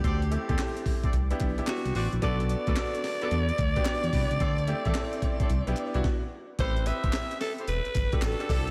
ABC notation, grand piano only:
X:1
M:4/4
L:1/16
Q:"Swing 16ths" 1/4=110
K:Em
V:1 name="Grand piano"
z2 [A,CEG] [A,CEG]4 z2 [B,DEG] z [B,DEG]3 z2 | [B,DFA]2 z [B,DFA] [B,DFA]2 z [B,DFA] z3 [B,DFG]4 z | z2 [A,CEG] [A,CEA]4 z2 [B,DEG] z [B,DEF] z4 | [CEGB] z [CEGB]4- [CEGB] z4 [DFGA] z [DFGA] [DEGA]2 |]